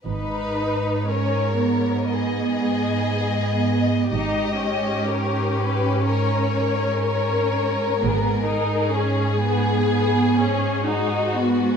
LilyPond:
<<
  \new Staff \with { instrumentName = "Violin section" } { \time 4/4 \key gis \minor \tempo 4 = 62 b'4 cis''4 dis''2 | dis''4 ais'8 b'8 cis''4 cis''4 | gis'1 | }
  \new Staff \with { instrumentName = "Violin section" } { \time 4/4 \key gis \minor b'4 ais'4 gis'2 | g'2 ais'8 ais'4.~ | ais'4 gis'2 fis'4 | }
  \new Staff \with { instrumentName = "Viola section" } { \time 4/4 \key gis \minor dis'4 cis'8 b2~ b8 | dis'8 cis'2.~ cis'8 | b8 dis'8 cis'8 b8 b8 cis'8 dis'8 b8 | }
  \new Staff \with { instrumentName = "Cello section" } { \clef bass \time 4/4 \key gis \minor gis,1 | gis,1 | gis,1 | }
  \new Staff \with { instrumentName = "Double bass section" } { \clef bass \time 4/4 \key gis \minor gis,,4 r2. | gis,,4 r2. | gis,,4 r2. | }
>>